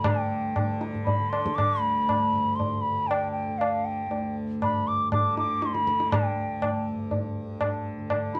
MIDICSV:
0, 0, Header, 1, 4, 480
1, 0, Start_track
1, 0, Tempo, 508044
1, 43, Time_signature, 3, 2, 24, 8
1, 3882, Tempo, 498339
1, 8012, End_track
2, 0, Start_track
2, 0, Title_t, "Bansuri"
2, 0, Program_c, 0, 73
2, 49, Note_on_c, 0, 79, 76
2, 771, Note_off_c, 0, 79, 0
2, 995, Note_on_c, 0, 83, 88
2, 1226, Note_on_c, 0, 84, 90
2, 1240, Note_off_c, 0, 83, 0
2, 1465, Note_on_c, 0, 86, 102
2, 1480, Note_off_c, 0, 84, 0
2, 1701, Note_on_c, 0, 83, 97
2, 1715, Note_off_c, 0, 86, 0
2, 2416, Note_on_c, 0, 84, 84
2, 2430, Note_off_c, 0, 83, 0
2, 2657, Note_on_c, 0, 83, 91
2, 2671, Note_off_c, 0, 84, 0
2, 2904, Note_on_c, 0, 79, 89
2, 2918, Note_off_c, 0, 83, 0
2, 3130, Note_off_c, 0, 79, 0
2, 3136, Note_on_c, 0, 79, 75
2, 3384, Note_on_c, 0, 77, 79
2, 3398, Note_off_c, 0, 79, 0
2, 3638, Note_on_c, 0, 79, 76
2, 3652, Note_off_c, 0, 77, 0
2, 4121, Note_off_c, 0, 79, 0
2, 4385, Note_on_c, 0, 83, 100
2, 4619, Note_on_c, 0, 86, 91
2, 4633, Note_off_c, 0, 83, 0
2, 4853, Note_off_c, 0, 86, 0
2, 4858, Note_on_c, 0, 86, 93
2, 5079, Note_off_c, 0, 86, 0
2, 5108, Note_on_c, 0, 86, 84
2, 5340, Note_on_c, 0, 84, 84
2, 5355, Note_off_c, 0, 86, 0
2, 5451, Note_on_c, 0, 83, 94
2, 5466, Note_off_c, 0, 84, 0
2, 5808, Note_on_c, 0, 79, 76
2, 5822, Note_off_c, 0, 83, 0
2, 6530, Note_off_c, 0, 79, 0
2, 7960, Note_on_c, 0, 83, 81
2, 8012, Note_off_c, 0, 83, 0
2, 8012, End_track
3, 0, Start_track
3, 0, Title_t, "Tanpura"
3, 0, Program_c, 1, 104
3, 0, Note_on_c, 1, 38, 63
3, 0, Note_on_c, 1, 43, 63
3, 0, Note_on_c, 1, 50, 60
3, 42, Note_off_c, 1, 43, 0
3, 42, Note_on_c, 1, 43, 58
3, 571, Note_off_c, 1, 50, 0
3, 571, Note_on_c, 1, 50, 61
3, 1138, Note_off_c, 1, 50, 0
3, 1138, Note_on_c, 1, 50, 60
3, 1665, Note_off_c, 1, 38, 0
3, 1669, Note_on_c, 1, 38, 57
3, 2200, Note_off_c, 1, 43, 0
3, 2200, Note_on_c, 1, 43, 61
3, 2744, Note_off_c, 1, 50, 0
3, 2747, Note_on_c, 1, 50, 55
3, 3292, Note_off_c, 1, 50, 0
3, 3292, Note_on_c, 1, 50, 56
3, 3834, Note_off_c, 1, 38, 0
3, 3838, Note_on_c, 1, 38, 60
3, 4369, Note_off_c, 1, 43, 0
3, 4373, Note_on_c, 1, 43, 57
3, 4921, Note_off_c, 1, 50, 0
3, 4921, Note_on_c, 1, 50, 63
3, 5450, Note_off_c, 1, 50, 0
3, 5450, Note_on_c, 1, 50, 56
3, 6001, Note_off_c, 1, 38, 0
3, 6004, Note_on_c, 1, 38, 58
3, 6549, Note_off_c, 1, 43, 0
3, 6553, Note_on_c, 1, 43, 64
3, 7089, Note_off_c, 1, 50, 0
3, 7089, Note_on_c, 1, 50, 51
3, 7615, Note_off_c, 1, 50, 0
3, 7615, Note_on_c, 1, 50, 54
3, 8012, Note_off_c, 1, 38, 0
3, 8012, Note_off_c, 1, 43, 0
3, 8012, Note_off_c, 1, 50, 0
3, 8012, End_track
4, 0, Start_track
4, 0, Title_t, "Tabla"
4, 41, Note_on_c, 9, 60, 101
4, 41, Note_on_c, 9, 64, 86
4, 135, Note_off_c, 9, 60, 0
4, 135, Note_off_c, 9, 64, 0
4, 528, Note_on_c, 9, 60, 70
4, 528, Note_on_c, 9, 64, 66
4, 623, Note_off_c, 9, 60, 0
4, 623, Note_off_c, 9, 64, 0
4, 765, Note_on_c, 9, 62, 59
4, 860, Note_off_c, 9, 62, 0
4, 891, Note_on_c, 9, 64, 56
4, 985, Note_off_c, 9, 64, 0
4, 1010, Note_on_c, 9, 63, 77
4, 1010, Note_on_c, 9, 64, 62
4, 1104, Note_off_c, 9, 63, 0
4, 1104, Note_off_c, 9, 64, 0
4, 1254, Note_on_c, 9, 60, 61
4, 1349, Note_off_c, 9, 60, 0
4, 1377, Note_on_c, 9, 37, 61
4, 1471, Note_off_c, 9, 37, 0
4, 1495, Note_on_c, 9, 60, 79
4, 1495, Note_on_c, 9, 64, 62
4, 1590, Note_off_c, 9, 60, 0
4, 1590, Note_off_c, 9, 64, 0
4, 1974, Note_on_c, 9, 60, 75
4, 1974, Note_on_c, 9, 64, 61
4, 2069, Note_off_c, 9, 60, 0
4, 2069, Note_off_c, 9, 64, 0
4, 2453, Note_on_c, 9, 63, 73
4, 2453, Note_on_c, 9, 64, 70
4, 2548, Note_off_c, 9, 63, 0
4, 2548, Note_off_c, 9, 64, 0
4, 2936, Note_on_c, 9, 60, 74
4, 3030, Note_off_c, 9, 60, 0
4, 3412, Note_on_c, 9, 60, 70
4, 3506, Note_off_c, 9, 60, 0
4, 3884, Note_on_c, 9, 63, 74
4, 3980, Note_off_c, 9, 63, 0
4, 4375, Note_on_c, 9, 60, 72
4, 4375, Note_on_c, 9, 64, 63
4, 4471, Note_off_c, 9, 60, 0
4, 4471, Note_off_c, 9, 64, 0
4, 4856, Note_on_c, 9, 60, 70
4, 4856, Note_on_c, 9, 64, 68
4, 4952, Note_off_c, 9, 60, 0
4, 4952, Note_off_c, 9, 64, 0
4, 5100, Note_on_c, 9, 62, 61
4, 5196, Note_off_c, 9, 62, 0
4, 5340, Note_on_c, 9, 62, 71
4, 5436, Note_off_c, 9, 62, 0
4, 5458, Note_on_c, 9, 62, 54
4, 5554, Note_off_c, 9, 62, 0
4, 5581, Note_on_c, 9, 37, 58
4, 5677, Note_off_c, 9, 37, 0
4, 5703, Note_on_c, 9, 62, 56
4, 5800, Note_off_c, 9, 62, 0
4, 5823, Note_on_c, 9, 60, 105
4, 5823, Note_on_c, 9, 64, 88
4, 5919, Note_off_c, 9, 60, 0
4, 5919, Note_off_c, 9, 64, 0
4, 6303, Note_on_c, 9, 60, 71
4, 6303, Note_on_c, 9, 64, 68
4, 6399, Note_off_c, 9, 60, 0
4, 6399, Note_off_c, 9, 64, 0
4, 6775, Note_on_c, 9, 63, 74
4, 6775, Note_on_c, 9, 64, 69
4, 6872, Note_off_c, 9, 63, 0
4, 6872, Note_off_c, 9, 64, 0
4, 7250, Note_on_c, 9, 60, 76
4, 7250, Note_on_c, 9, 64, 67
4, 7347, Note_off_c, 9, 60, 0
4, 7347, Note_off_c, 9, 64, 0
4, 7727, Note_on_c, 9, 60, 74
4, 7727, Note_on_c, 9, 64, 64
4, 7824, Note_off_c, 9, 60, 0
4, 7824, Note_off_c, 9, 64, 0
4, 7966, Note_on_c, 9, 62, 70
4, 8012, Note_off_c, 9, 62, 0
4, 8012, End_track
0, 0, End_of_file